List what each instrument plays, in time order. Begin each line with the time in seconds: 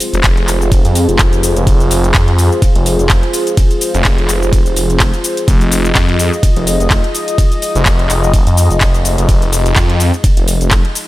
Already playing: analog synth pad F4 G#4 C5
0.00 open hi-hat, shaker
0.13 detuned saw bass F1, closed hi-hat, shaker
0.24 kick, clap, closed hi-hat, ride, shaker
0.37 closed hi-hat
0.48 detuned saw bass F1, clap, open hi-hat, shaker
0.62 shaker
0.72 kick, closed hi-hat, ride, shaker
0.85 detuned saw bass F2, closed hi-hat, shaker
0.95 open hi-hat, shaker
1.09 detuned saw bass F1, closed hi-hat, shaker
1.19 kick, clap, closed hi-hat, ride, shaker
1.33 closed hi-hat, shaker
1.43 open hi-hat, shaker
1.56 detuned saw bass F1, closed hi-hat, shaker
1.67 detuned saw bass F1, kick, closed hi-hat, ride, shaker
1.80 closed hi-hat, shaker
1.91 open hi-hat, shaker
2.04 closed hi-hat, shaker
2.14 detuned saw bass F2, kick, clap, closed hi-hat, ride, shaker
2.28 closed hi-hat
2.39 open hi-hat, shaker
2.52 shaker
2.62 kick, closed hi-hat, ride, shaker
2.75 detuned saw bass F1, closed hi-hat
2.86 open hi-hat, shaker
2.99 detuned saw bass F1, closed hi-hat, shaker
3.10 kick, clap, closed hi-hat, ride, shaker
3.23 closed hi-hat
3.33 open hi-hat, shaker
3.47 closed hi-hat, shaker
3.57 kick, closed hi-hat, ride, shaker
3.71 closed hi-hat, shaker
3.81 open hi-hat, shaker
3.94 detuned saw bass F1, closed hi-hat, shaker
4.05 kick, clap, closed hi-hat, ride, shaker
4.18 closed hi-hat
4.29 detuned saw bass F1, clap, open hi-hat, shaker
4.43 shaker
4.53 kick, closed hi-hat, ride, shaker
4.66 detuned saw bass F1, closed hi-hat, shaker
4.76 open hi-hat, shaker
4.90 closed hi-hat, shaker
5.00 kick, clap, closed hi-hat, ride, shaker
5.14 closed hi-hat, shaker
5.24 open hi-hat, shaker
5.37 closed hi-hat, shaker
5.48 detuned saw bass F1, analog synth pad D#5, kick, closed hi-hat, ride, shaker
5.61 closed hi-hat, shaker
5.72 open hi-hat, shaker
5.85 closed hi-hat, shaker
5.95 detuned saw bass F2, kick, clap, closed hi-hat, ride, shaker
6.09 closed hi-hat
6.19 open hi-hat, shaker
6.33 shaker
6.43 kick, closed hi-hat, ride, shaker
6.56 detuned saw bass F1, closed hi-hat
6.67 open hi-hat, shaker
6.80 detuned saw bass F1, closed hi-hat, shaker
6.90 kick, clap, closed hi-hat, ride, shaker
7.04 closed hi-hat
7.15 open hi-hat, shaker
7.28 closed hi-hat, shaker
7.38 kick, closed hi-hat, ride, shaker
7.52 closed hi-hat, shaker
7.62 open hi-hat, shaker
7.75 detuned saw bass F1, closed hi-hat, shaker
7.86 kick, clap, closed hi-hat, ride, shaker
7.99 closed hi-hat
8.09 detuned saw bass F1, clap, open hi-hat, shaker
8.24 shaker
8.34 kick, closed hi-hat, ride, shaker
8.47 detuned saw bass F2, closed hi-hat, shaker
8.57 open hi-hat, shaker
8.71 detuned saw bass F1, closed hi-hat, shaker
8.81 kick, clap, closed hi-hat, ride, shaker
8.94 closed hi-hat, shaker
9.05 open hi-hat, shaker
9.18 detuned saw bass F1, closed hi-hat, shaker
9.29 detuned saw bass F1, kick, closed hi-hat, ride, shaker
9.42 closed hi-hat, shaker
9.53 open hi-hat, shaker
9.66 closed hi-hat, shaker
9.76 detuned saw bass F2, kick, clap, closed hi-hat, ride, shaker
9.90 closed hi-hat
10.00 open hi-hat, shaker
10.14 shaker
10.24 kick, closed hi-hat, ride, shaker
10.37 detuned saw bass F1, closed hi-hat
10.48 open hi-hat, shaker
10.61 detuned saw bass F1, closed hi-hat, shaker
10.71 kick, clap, closed hi-hat, ride, shaker
10.85 closed hi-hat
10.95 open hi-hat, shaker